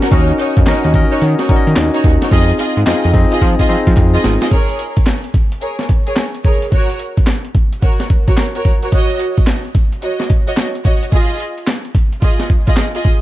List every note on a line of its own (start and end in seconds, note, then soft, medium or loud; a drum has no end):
0.00 0.12 C#4 loud
0.00 0.15 C#4 medium
0.00 0.12 F#4 medium
0.00 0.11 F#4 medium
0.00 0.12 A#4 loud
0.00 0.15 A#4 medium
0.00 snare medium
0.00 closed hi-hat medium
0.12 0.33 D#2 loud
0.12 0.53 C#4 loud
0.12 0.31 D#4 medium
0.12 0.53 D#4 medium
0.12 0.31 F#4 medium
0.12 0.53 F#4 medium
0.12 0.53 A#4 medium
0.12 0.31 C#5 loud
0.12 0.54 D#5 loud
0.12 kick loud
0.12 closed hi-hat medium
0.12 tambourine medium
0.30 closed hi-hat medium
0.39 0.58 D#4 medium
0.39 0.59 F#4 medium
0.39 0.59 C#5 medium
0.39 closed hi-hat medium
0.39 tambourine medium
0.57 0.64 F2 loud
0.57 kick loud
0.57 closed hi-hat medium
0.66 0.74 D#2 medium
0.66 0.88 C#4 loud
0.66 0.86 D#4 medium
0.66 0.88 D#4 medium
0.66 0.86 F#4 medium
0.66 0.89 F#4 medium
0.66 0.89 A#4 medium
0.66 0.86 C#5 medium
0.66 0.89 D#5 loud
0.66 snare loud
0.66 clap medium
0.66 clap loud
0.66 closed hi-hat medium
0.66 tambourine loud
0.84 1.05 D#2 medium
0.84 closed hi-hat soft
0.94 1.35 C#4 medium
0.94 1.36 D#4 medium
0.94 1.36 F#4 medium
0.94 1.36 A#4 medium
0.94 1.36 D#5 loud
0.94 kick loud
0.94 closed hi-hat medium
0.94 tambourine medium
1.12 1.24 D#4 medium
1.12 1.25 F#4 medium
1.12 1.25 C#5 medium
1.12 closed hi-hat medium
1.22 1.35 D#3 loud
1.22 closed hi-hat medium
1.22 tambourine medium
1.39 1.52 D#4 medium
1.39 1.52 F#4 medium
1.39 1.52 C#5 medium
1.39 snare medium
1.39 closed hi-hat medium
1.49 1.56 D#3 soft
1.49 2.07 C#4 loud
1.49 2.07 D#4 medium
1.49 2.07 F#4 medium
1.49 2.07 A#4 medium
1.49 1.58 D5 medium
1.49 kick loud
1.49 closed hi-hat medium
1.49 tambourine medium
1.56 2.11 D#5 loud
1.67 1.74 D#3 medium
1.67 closed hi-hat medium
1.76 1.90 D#2 medium
1.76 snare loud
1.76 clap loud
1.76 closed hi-hat medium
1.76 tambourine loud
1.94 2.07 D#4 medium
1.94 2.07 F#4 medium
1.94 2.07 C#5 medium
1.94 closed hi-hat medium
2.04 2.18 D#2 medium
2.04 kick medium
2.04 closed hi-hat medium
2.22 2.35 D#4 medium
2.22 2.35 F#4 medium
2.22 2.35 C#5 medium
2.22 snare medium
2.22 closed hi-hat medium
2.31 2.53 F2 loud
2.31 2.73 C4 loud
2.31 2.73 D#4 medium
2.31 2.51 F4 loud
2.31 2.73 F4 medium
2.31 2.51 G#4 medium
2.31 2.73 G#4 medium
2.31 2.51 D#5 loud
2.31 2.73 D#5 loud
2.31 kick loud
2.31 closed hi-hat medium
2.31 tambourine medium
2.49 closed hi-hat medium
2.59 2.78 F4 medium
2.59 2.79 G#4 medium
2.59 2.79 D#5 medium
2.59 closed hi-hat medium
2.59 tambourine medium
2.77 2.84 G#2 loud
2.77 closed hi-hat medium
2.86 2.94 F2 soft
2.86 3.08 C4 medium
2.86 3.08 D#4 medium
2.86 3.06 F4 medium
2.86 3.08 F4 medium
2.86 3.06 G#4 medium
2.86 3.09 G#4 medium
2.86 3.06 D#5 medium
2.86 3.08 D#5 medium
2.86 snare loud
2.86 clap medium
2.86 clap loud
2.86 closed hi-hat medium
2.86 tambourine loud
3.04 3.26 F2 loud
3.04 closed hi-hat medium
3.14 3.55 C4 medium
3.14 3.55 D#4 medium
3.14 3.55 F4 medium
3.14 3.56 G#4 medium
3.14 3.56 D#5 loud
3.14 kick loud
3.14 open hi-hat medium
3.14 tambourine medium
3.32 3.45 F4 medium
3.32 3.45 G#4 medium
3.32 3.45 D#5 medium
3.32 closed hi-hat medium
3.42 3.55 F3 loud
3.42 kick medium
3.42 closed hi-hat medium
3.59 3.72 F4 medium
3.59 3.72 G#4 medium
3.59 3.72 D#5 medium
3.59 kick medium
3.59 closed hi-hat medium
3.69 3.77 F3 soft
3.69 4.27 C4 loud
3.69 4.27 D#4 medium
3.69 4.27 F4 medium
3.69 4.27 G#4 medium
3.69 4.27 D#5 loud
3.69 closed hi-hat medium
3.87 3.95 F3 loud
3.87 kick medium
3.87 closed hi-hat medium
3.96 4.18 F2 medium
3.96 kick loud
3.96 clap medium
3.96 closed hi-hat medium
4.14 4.27 F4 medium
4.14 4.27 G#4 medium
4.14 4.27 D#5 medium
4.14 closed hi-hat medium
4.24 4.38 G#1 medium
4.24 snare loud
4.24 open hi-hat medium
4.41 4.54 F4 medium
4.41 4.49 G#4 medium
4.41 4.55 D#5 medium
4.41 snare loud
4.41 closed hi-hat medium
4.51 4.77 G#4 medium
4.51 4.77 A#4 medium
4.51 4.77 C#5 medium
4.51 kick medium
4.51 closed hi-hat medium
4.69 closed hi-hat soft
4.79 closed hi-hat medium
4.97 kick loud
4.97 closed hi-hat medium
5.06 snare loud
5.06 clap medium
5.06 closed hi-hat medium
5.24 closed hi-hat soft
5.34 kick medium
5.34 closed hi-hat medium
5.52 closed hi-hat soft
5.61 5.81 G#4 medium
5.61 5.81 A#4 medium
5.61 5.81 C#5 medium
5.61 closed hi-hat medium
5.79 snare medium
5.79 closed hi-hat soft
5.89 kick medium
5.89 closed hi-hat medium
6.06 6.20 G#4 medium
6.06 6.20 A#4 medium
6.06 6.20 C#5 medium
6.06 closed hi-hat medium
6.16 snare loud
6.16 clap medium
6.16 closed hi-hat medium
6.35 closed hi-hat soft
6.44 6.64 G#4 medium
6.44 6.64 A#4 medium
6.44 6.64 C#5 medium
6.44 kick medium
6.44 closed hi-hat medium
6.62 closed hi-hat medium
6.72 6.98 F#4 medium
6.72 6.98 A#4 medium
6.72 6.98 C#5 medium
6.72 kick medium
6.72 closed hi-hat medium
6.90 closed hi-hat medium
6.99 closed hi-hat medium
7.17 kick medium
7.17 closed hi-hat medium
7.27 snare loud
7.27 clap medium
7.27 closed hi-hat medium
7.45 closed hi-hat soft
7.55 kick medium
7.55 closed hi-hat medium
7.73 closed hi-hat soft
7.82 8.02 F#4 medium
7.82 8.02 A#4 medium
7.82 8.02 C#5 medium
7.82 kick medium
7.82 closed hi-hat medium
8.00 snare medium
8.00 closed hi-hat soft
8.10 kick medium
8.10 closed hi-hat medium
8.27 8.40 F#4 medium
8.27 8.40 A#4 medium
8.27 8.41 C#5 medium
8.27 kick medium
8.27 closed hi-hat medium
8.37 snare loud
8.37 clap medium
8.37 closed hi-hat medium
8.55 8.68 F#4 medium
8.55 8.68 A#4 medium
8.55 8.68 C#5 medium
8.55 closed hi-hat medium
8.65 kick medium
8.65 closed hi-hat medium
8.83 8.91 F#4 medium
8.83 8.95 A#4 medium
8.83 8.92 C#5 medium
8.83 closed hi-hat medium
8.92 9.18 F#4 medium
8.92 9.18 C#5 medium
8.92 9.19 D#5 loud
8.92 kick medium
8.92 closed hi-hat medium
9.10 closed hi-hat medium
9.19 closed hi-hat medium
9.37 kick loud
9.37 closed hi-hat medium
9.47 snare loud
9.47 clap medium
9.47 closed hi-hat medium
9.65 closed hi-hat soft
9.75 kick medium
9.75 closed hi-hat medium
9.92 closed hi-hat medium
10.02 10.22 F#4 medium
10.02 10.22 C#5 medium
10.02 10.22 D#5 medium
10.02 closed hi-hat medium
10.20 snare medium
10.20 closed hi-hat soft
10.30 kick medium
10.30 closed hi-hat medium
10.48 10.60 F#4 medium
10.48 10.60 C#5 medium
10.48 10.61 D#5 medium
10.48 closed hi-hat medium
10.57 snare loud
10.57 clap medium
10.57 closed hi-hat medium
10.75 closed hi-hat medium
10.84 11.04 F#4 medium
10.84 11.04 C#5 medium
10.84 11.04 D#5 medium
10.84 kick medium
10.84 closed hi-hat medium
11.03 closed hi-hat soft
11.12 11.38 F4 medium
11.12 11.38 G#4 medium
11.12 11.38 D#5 loud
11.12 kick medium
11.12 closed hi-hat medium
11.30 closed hi-hat medium
11.40 closed hi-hat medium
11.58 closed hi-hat medium
11.67 snare loud
11.67 clap medium
11.67 closed hi-hat medium
11.85 closed hi-hat soft
11.95 kick medium
11.95 closed hi-hat medium
12.13 closed hi-hat medium
12.22 12.42 F4 medium
12.22 12.42 G#4 medium
12.22 12.42 D#5 medium
12.22 kick medium
12.22 closed hi-hat medium
12.40 snare medium
12.40 closed hi-hat soft
12.50 kick medium
12.50 closed hi-hat medium
12.67 12.80 F4 medium
12.67 12.80 G#4 medium
12.67 12.81 D#5 medium
12.67 kick medium
12.67 closed hi-hat medium
12.77 snare loud
12.77 clap medium
12.77 closed hi-hat medium
12.95 13.08 F4 medium
12.95 13.08 G#4 medium
12.95 13.08 D#5 medium
12.95 closed hi-hat medium
13.04 kick medium
13.04 closed hi-hat medium